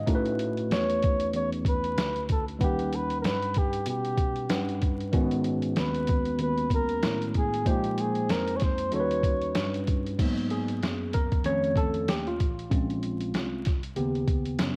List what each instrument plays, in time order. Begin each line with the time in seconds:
0.07 tine electric piano A2 A3 C#4 D#4 F#4 A#4, kick, closed hi-hat
0.15 tine electric piano B4
0.26 closed hi-hat
0.39 closed hi-hat
0.58 closed hi-hat
0.70 tine electric piano E2, flugelhorn C#5, snare, closed hi-hat
0.90 closed hi-hat
1.03 kick, closed hi-hat
1.20 closed hi-hat
1.33 tine electric piano E2, flugelhorn C#5, closed hi-hat
1.52 closed hi-hat
1.65 flugelhorn B4, kick, closed hi-hat
1.84 closed hi-hat
1.97 tine electric piano D2, snare, closed hi-hat
2.16 closed hi-hat
2.29 flugelhorn A4, kick, closed hi-hat
2.48 closed hi-hat
2.59 tine electric piano D#2 G3 C#4 D#4 B4 F#5, kick, closed hi-hat
2.63 flugelhorn G4
2.79 closed hi-hat
2.92 flugelhorn B4, closed hi-hat
3.10 closed hi-hat
3.20 tine electric piano G2, flugelhorn A#4, closed hi-hat
3.25 flugelhorn B4, snare
3.42 closed hi-hat
3.54 flugelhorn G4, kick, closed hi-hat
3.73 closed hi-hat
3.86 tine electric piano B2, flugelhorn G4, closed hi-hat
4.05 closed hi-hat
4.17 kick, closed hi-hat
4.36 closed hi-hat
4.49 tine electric piano G2 G3 C#4 D#4 B4 F#5, snare, closed hi-hat
4.69 closed hi-hat
4.82 kick, closed hi-hat
5.00 closed hi-hat
5.12 tine electric piano G#2 D#3 G#3 B3 C#4 F#4, kick, closed hi-hat
5.31 closed hi-hat
5.44 closed hi-hat
5.62 closed hi-hat
5.76 tine electric piano D#2, flugelhorn B4, snare, closed hi-hat
5.95 closed hi-hat
6.07 kick, closed hi-hat
6.25 closed hi-hat
6.39 tine electric piano D#2, flugelhorn B4, closed hi-hat
6.58 closed hi-hat
6.70 flugelhorn A#4, kick, closed hi-hat
6.89 closed hi-hat
7.03 tine electric piano A2, snare, closed hi-hat
7.22 closed hi-hat
7.34 flugelhorn G#4, kick, closed hi-hat
7.54 closed hi-hat
7.65 tine electric piano A#2 F3 G#3 A#3 D#4 C5, flugelhorn G4, kick, closed hi-hat
7.84 closed hi-hat
7.98 flugelhorn G#4, closed hi-hat
8.15 closed hi-hat
8.29 tine electric piano F2, flugelhorn A#4, snare, closed hi-hat
8.47 closed hi-hat
8.56 flugelhorn C#5, closed hi-hat
8.61 flugelhorn C5, kick, snare
8.78 closed hi-hat
8.91 tine electric piano D#2 G3 C#4 D#4 F#4 A4, flugelhorn C#5, closed hi-hat
9.00 tine electric piano B4
9.11 closed hi-hat
9.23 kick, closed hi-hat
9.42 closed hi-hat
9.55 tine electric piano G2, snare, closed hi-hat
9.74 closed hi-hat
9.87 kick, closed hi-hat
10.06 closed hi-hat
10.18 tine electric piano G#2 F#3 A#3 B3, kick, closed hi-hat, crash
10.37 closed hi-hat
10.50 tine electric piano G#4, closed hi-hat
10.68 closed hi-hat
10.83 tine electric piano F#2, snare, closed hi-hat
11.13 tine electric piano A#4, kick, closed hi-hat
11.32 kick, closed hi-hat
11.44 tine electric piano F2 D#3 A3 C#4 C#5, closed hi-hat
11.64 closed hi-hat
11.76 tine electric piano A4, kick, closed hi-hat
11.94 closed hi-hat
12.08 tine electric piano D#2 G4, snare, closed hi-hat
12.27 tine electric piano F4, closed hi-hat
12.40 tine electric piano A1, kick, closed hi-hat
12.59 closed hi-hat
12.70 tine electric piano A#1 G#3 C4 C#4, kick, closed hi-hat
12.90 closed hi-hat
13.03 closed hi-hat
13.21 closed hi-hat
13.34 tine electric piano C2, snare, closed hi-hat
13.65 kick, snare, closed hi-hat
13.83 closed hi-hat
13.96 tine electric piano D#2 C#3 B3 G4, closed hi-hat
14.15 closed hi-hat
14.28 kick, closed hi-hat
14.46 closed hi-hat
14.59 tine electric piano F#2, snare, closed hi-hat